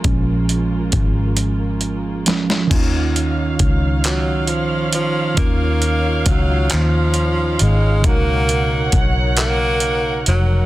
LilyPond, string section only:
\new Staff \with { instrumentName = "String section" } { \time 6/8 \key ees \minor \tempo 4. = 45 << { <aes bes f'>2. | <f' des'' f''>2.~ | <f' des'' f''>2. | <bes' des'' ges''>2. | } \\ { des2. | ees'2.~ | ees'2.~ | ees'2. | } >> }